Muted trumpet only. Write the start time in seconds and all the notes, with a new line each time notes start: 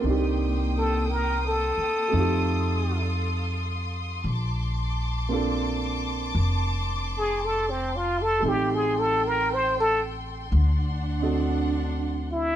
0.78 A4
1.11 A#4
1.47 A4
7.18 G#4
7.45 A4
7.70 C4
7.96 F4
8.22 A4
8.48 G4
8.74 G#4
8.99 A4
9.27 A#4
9.54 C5
9.80 A4
12.32 E4